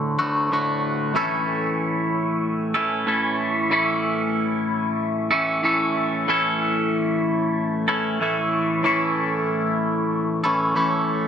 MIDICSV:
0, 0, Header, 1, 2, 480
1, 0, Start_track
1, 0, Tempo, 640342
1, 859, Time_signature, 4, 2, 24, 8
1, 8453, End_track
2, 0, Start_track
2, 0, Title_t, "Clean electric guitar"
2, 0, Program_c, 0, 27
2, 0, Note_on_c, 0, 38, 86
2, 0, Note_on_c, 0, 45, 76
2, 0, Note_on_c, 0, 50, 86
2, 0, Note_on_c, 0, 57, 82
2, 0, Note_on_c, 0, 66, 89
2, 125, Note_off_c, 0, 38, 0
2, 127, Note_off_c, 0, 45, 0
2, 129, Note_off_c, 0, 50, 0
2, 131, Note_off_c, 0, 66, 0
2, 140, Note_on_c, 0, 66, 67
2, 141, Note_off_c, 0, 57, 0
2, 144, Note_on_c, 0, 57, 78
2, 147, Note_on_c, 0, 50, 64
2, 153, Note_on_c, 0, 45, 63
2, 158, Note_on_c, 0, 38, 66
2, 365, Note_off_c, 0, 66, 0
2, 369, Note_off_c, 0, 50, 0
2, 372, Note_off_c, 0, 38, 0
2, 372, Note_off_c, 0, 45, 0
2, 381, Note_on_c, 0, 38, 73
2, 388, Note_on_c, 0, 45, 65
2, 391, Note_on_c, 0, 50, 74
2, 393, Note_off_c, 0, 57, 0
2, 396, Note_on_c, 0, 57, 75
2, 400, Note_on_c, 0, 66, 70
2, 845, Note_off_c, 0, 45, 0
2, 846, Note_off_c, 0, 38, 0
2, 851, Note_off_c, 0, 50, 0
2, 854, Note_on_c, 0, 45, 75
2, 855, Note_off_c, 0, 66, 0
2, 862, Note_on_c, 0, 52, 85
2, 865, Note_off_c, 0, 57, 0
2, 866, Note_on_c, 0, 57, 75
2, 868, Note_on_c, 0, 61, 78
2, 870, Note_on_c, 0, 64, 88
2, 874, Note_on_c, 0, 69, 89
2, 2043, Note_off_c, 0, 45, 0
2, 2054, Note_off_c, 0, 69, 0
2, 2057, Note_on_c, 0, 69, 68
2, 2058, Note_off_c, 0, 64, 0
2, 2061, Note_on_c, 0, 64, 72
2, 2063, Note_off_c, 0, 61, 0
2, 2064, Note_off_c, 0, 57, 0
2, 2066, Note_on_c, 0, 61, 67
2, 2067, Note_on_c, 0, 57, 68
2, 2069, Note_off_c, 0, 52, 0
2, 2072, Note_on_c, 0, 52, 62
2, 2073, Note_on_c, 0, 45, 65
2, 2285, Note_off_c, 0, 45, 0
2, 2294, Note_on_c, 0, 45, 73
2, 2295, Note_off_c, 0, 52, 0
2, 2298, Note_off_c, 0, 57, 0
2, 2298, Note_on_c, 0, 52, 68
2, 2301, Note_on_c, 0, 57, 74
2, 2303, Note_off_c, 0, 61, 0
2, 2305, Note_off_c, 0, 64, 0
2, 2306, Note_on_c, 0, 61, 78
2, 2308, Note_off_c, 0, 69, 0
2, 2308, Note_on_c, 0, 64, 79
2, 2311, Note_on_c, 0, 69, 73
2, 2763, Note_off_c, 0, 45, 0
2, 2777, Note_on_c, 0, 45, 78
2, 2780, Note_off_c, 0, 52, 0
2, 2783, Note_off_c, 0, 57, 0
2, 2783, Note_on_c, 0, 52, 80
2, 2785, Note_off_c, 0, 61, 0
2, 2786, Note_on_c, 0, 57, 83
2, 2788, Note_off_c, 0, 64, 0
2, 2788, Note_on_c, 0, 61, 81
2, 2791, Note_on_c, 0, 64, 85
2, 2793, Note_off_c, 0, 69, 0
2, 2796, Note_on_c, 0, 69, 81
2, 3967, Note_off_c, 0, 45, 0
2, 3975, Note_off_c, 0, 69, 0
2, 3978, Note_on_c, 0, 69, 75
2, 3979, Note_off_c, 0, 64, 0
2, 3982, Note_on_c, 0, 64, 68
2, 3983, Note_off_c, 0, 61, 0
2, 3986, Note_on_c, 0, 61, 71
2, 3987, Note_off_c, 0, 57, 0
2, 3990, Note_off_c, 0, 52, 0
2, 3990, Note_on_c, 0, 57, 69
2, 3993, Note_on_c, 0, 52, 70
2, 3996, Note_on_c, 0, 45, 59
2, 4209, Note_off_c, 0, 45, 0
2, 4218, Note_on_c, 0, 45, 70
2, 4223, Note_off_c, 0, 52, 0
2, 4224, Note_off_c, 0, 57, 0
2, 4226, Note_on_c, 0, 52, 71
2, 4227, Note_off_c, 0, 61, 0
2, 4227, Note_on_c, 0, 57, 70
2, 4230, Note_on_c, 0, 61, 74
2, 4232, Note_off_c, 0, 64, 0
2, 4233, Note_off_c, 0, 69, 0
2, 4235, Note_on_c, 0, 64, 77
2, 4236, Note_on_c, 0, 69, 75
2, 4687, Note_off_c, 0, 45, 0
2, 4703, Note_on_c, 0, 45, 69
2, 4706, Note_off_c, 0, 52, 0
2, 4709, Note_off_c, 0, 57, 0
2, 4709, Note_on_c, 0, 52, 75
2, 4712, Note_on_c, 0, 57, 87
2, 4714, Note_off_c, 0, 61, 0
2, 4714, Note_off_c, 0, 64, 0
2, 4717, Note_on_c, 0, 61, 88
2, 4717, Note_on_c, 0, 64, 87
2, 4719, Note_off_c, 0, 69, 0
2, 4722, Note_on_c, 0, 69, 83
2, 5890, Note_off_c, 0, 45, 0
2, 5893, Note_off_c, 0, 52, 0
2, 5897, Note_off_c, 0, 61, 0
2, 5897, Note_off_c, 0, 64, 0
2, 5903, Note_off_c, 0, 69, 0
2, 5906, Note_on_c, 0, 69, 80
2, 5912, Note_on_c, 0, 64, 78
2, 5915, Note_off_c, 0, 57, 0
2, 5915, Note_on_c, 0, 61, 73
2, 5918, Note_on_c, 0, 57, 71
2, 5919, Note_on_c, 0, 52, 66
2, 5925, Note_on_c, 0, 45, 63
2, 6134, Note_off_c, 0, 64, 0
2, 6135, Note_off_c, 0, 61, 0
2, 6136, Note_off_c, 0, 45, 0
2, 6137, Note_off_c, 0, 52, 0
2, 6145, Note_on_c, 0, 45, 70
2, 6151, Note_on_c, 0, 52, 80
2, 6154, Note_off_c, 0, 57, 0
2, 6157, Note_on_c, 0, 57, 72
2, 6162, Note_on_c, 0, 61, 70
2, 6162, Note_on_c, 0, 64, 77
2, 6163, Note_off_c, 0, 69, 0
2, 6166, Note_on_c, 0, 69, 75
2, 6610, Note_off_c, 0, 45, 0
2, 6613, Note_off_c, 0, 52, 0
2, 6618, Note_off_c, 0, 61, 0
2, 6618, Note_off_c, 0, 64, 0
2, 6620, Note_on_c, 0, 45, 76
2, 6625, Note_off_c, 0, 57, 0
2, 6627, Note_on_c, 0, 52, 81
2, 6628, Note_on_c, 0, 57, 81
2, 6633, Note_on_c, 0, 61, 85
2, 6636, Note_off_c, 0, 69, 0
2, 6637, Note_on_c, 0, 64, 84
2, 6639, Note_on_c, 0, 69, 86
2, 7805, Note_off_c, 0, 45, 0
2, 7809, Note_off_c, 0, 52, 0
2, 7809, Note_off_c, 0, 57, 0
2, 7812, Note_off_c, 0, 61, 0
2, 7814, Note_off_c, 0, 64, 0
2, 7815, Note_off_c, 0, 69, 0
2, 7823, Note_on_c, 0, 69, 70
2, 7831, Note_on_c, 0, 64, 67
2, 7837, Note_on_c, 0, 61, 77
2, 7839, Note_on_c, 0, 57, 73
2, 7841, Note_on_c, 0, 52, 63
2, 7846, Note_on_c, 0, 45, 58
2, 8045, Note_off_c, 0, 45, 0
2, 8047, Note_off_c, 0, 69, 0
2, 8051, Note_off_c, 0, 52, 0
2, 8051, Note_off_c, 0, 64, 0
2, 8054, Note_off_c, 0, 61, 0
2, 8054, Note_on_c, 0, 45, 68
2, 8055, Note_off_c, 0, 57, 0
2, 8060, Note_on_c, 0, 52, 69
2, 8064, Note_on_c, 0, 57, 71
2, 8065, Note_on_c, 0, 61, 69
2, 8070, Note_on_c, 0, 64, 76
2, 8073, Note_on_c, 0, 69, 78
2, 8453, Note_off_c, 0, 45, 0
2, 8453, Note_off_c, 0, 52, 0
2, 8453, Note_off_c, 0, 57, 0
2, 8453, Note_off_c, 0, 61, 0
2, 8453, Note_off_c, 0, 64, 0
2, 8453, Note_off_c, 0, 69, 0
2, 8453, End_track
0, 0, End_of_file